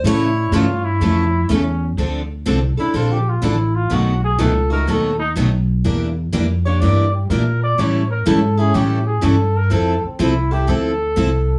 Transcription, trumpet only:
X:1
M:4/4
L:1/8
Q:"Swing" 1/4=124
K:Dm
V:1 name="Trumpet"
E2 F E3 ^C2 | z3 E (3F G F E F | ^F ^G A B A ^D z2 | z3 ^c d G B d |
^c B A ^G =G ^G A B | A C E G A4 |]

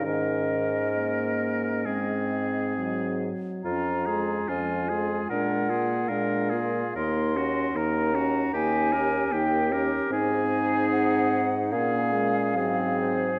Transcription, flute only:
X:1
M:4/4
L:1/8
Q:1/4=73
K:Abmix
V:1 name="Flute"
e6 z2 | b2 a2 g2 f2 | c'2 b2 a2 =g z | a2 g2 f3 c |]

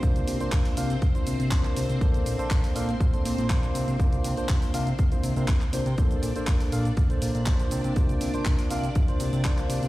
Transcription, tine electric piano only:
X:1
M:4/4
L:1/16
Q:1/4=121
K:Cdor
V:1 name="Tine electric piano"
[B,DFc]3 [B,DFc]3 [B,DFf] z2 [B,DFc]3 [B,DFc]4 | [B,DAc]3 [B,DAc]3 [B,DAf] z2 [B,DAc]3 [B,DFc]4 | [B,DFc]3 [B,DFc]3 [B,DFf] z2 [B,DFc]2 [B,DFB] z2 [B,DFc] z | [B,DAc]3 [B,DAc]3 [B,DAf] z2 [B,DAc]3 [B,DFc]4 |
[B,DFc]3 [B,DFc]3 [B,DFf] z2 [B,DFc]3 [B,DFc]4 |]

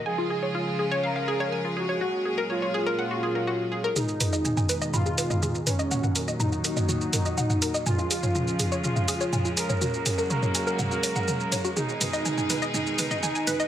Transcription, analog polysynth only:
X:1
M:4/4
L:1/8
Q:1/4=123
K:G#dor
V:1 name="Analog polysynth"
G4 A3 F- | F2 E6 | D4 E3 C- | C2 D6 |
E4 E3 A- | A2 A6 | D4 D4 |]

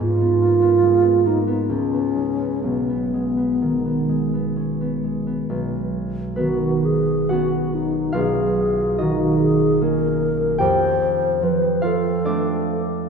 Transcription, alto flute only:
X:1
M:3/4
L:1/8
Q:1/4=70
K:Blyd
V:1 name="Alto flute"
E3 D C2 | B,4 z2 | z2 F G F D | G2 F G A2 |
=c2 B =A2 z |]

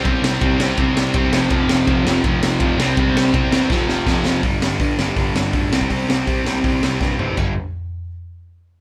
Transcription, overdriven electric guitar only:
X:1
M:4/4
L:1/8
Q:1/4=164
K:Cdor
V:1 name="Overdriven electric guitar" clef=bass
[C,G,C]2 [C,G,C] [C,G,C] [C,G,C]2 [C,G,C] [F,,C,F,] | [F,,C,F,]2 [F,,C,F,] [F,,C,F,] [F,,C,F,]2 [F,,C,F,] [C,G,C] | [C,G,C]2 [C,G,C] [C,G,C] [F,,C,F,]2 [F,,C,F,] [F,,C,F,] | [G,,D,G,] [G,,D,G,] [G,,D,G,] [G,,D,G,] [G,,D,G,] [G,,D,G,] [G,,D,G,] [C,G,C] |
[C,G,C] [C,G,C] [C,G,C] [C,G,C] [C,G,C] [C,G,C] [C,G,C] [C,G,C] | [G,,D,G,] z6 z |]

